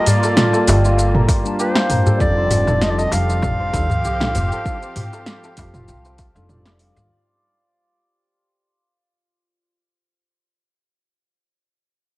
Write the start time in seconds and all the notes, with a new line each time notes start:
Already playing: G3 A#3 F4 G4 A#4
0.06 D5, open hi-hat, darbuka dum, shaker
0.23 A4, darbuka ka, shaker
0.37 snare, mid tom, shaker
0.53 A4, darbuka ka, shaker
0.67 G1 G4, open hi-hat, darbuka tek, shaker
0.85 F4, shaker
0.98 darbuka ka, shaker
1.15 A#4, mid tom
1.28 kick, open hi-hat, darbuka tek, shaker
1.44 G3 A#3 D4 F4 A5, shaker
1.59 G4 C5, shaker
1.76 F4, snare, darbuka tek
1.90 G2 A#4, mid tom, open hi-hat, shaker
2.06 A4, darbuka dum, shaker
2.18 F1 F3 G3 D4 D#4 F4 D5, kick, shaker
2.22 A4
2.34 C4 C5
2.51 open hi-hat, darbuka dum, shaker
2.67 A4, mid tom, darbuka ka, shaker
2.82 D#5, snare, shaker
2.89 G4 D5
2.98 A4 D#5, darbuka ka, shaker
3.12 F1 G4 F5, open hi-hat, darbuka tek, shaker
3.29 F4, shaker
3.42 kick, mid tom, darbuka tek, shaker
3.60 C5
3.73 D#2 G3 D4 D#4 F4 A4, kick, open hi-hat, darbuka ka, shaker
3.90 darbuka dum, shaker
4.05 C2 G4, shaker
4.20 G3 D4 D#4 F4 A4, snare, mid tom, darbuka tek
4.35 F1 C5, open hi-hat, darbuka dum, shaker
4.52 A4, shaker
4.65 G3 D4 D#4 F4 A4, kick, shaker
4.82 C5, shaker
4.96 mid tom, open hi-hat, darbuka dum, shaker
5.13 A4, darbuka ka, shaker
5.26 snare, shaker
5.44 A4, darbuka ka, shaker
5.57 F1 G4, kick, open hi-hat, darbuka tek, shaker
5.74 F4, mid tom, shaker
5.88 C2, darbuka ka, shaker
6.05 C5, darbuka tek, shaker
6.18 F4, kick, open hi-hat, darbuka tek, shaker
6.35 F1 G3 D4 D#4 F4 A4, shaker
6.49 G3 D4 D#4 F4 A4 D5, mid tom, shaker
6.66 D5, snare, darbuka tek, shaker
6.79 F5, open hi-hat, shaker
6.96 D#2, darbuka dum, shaker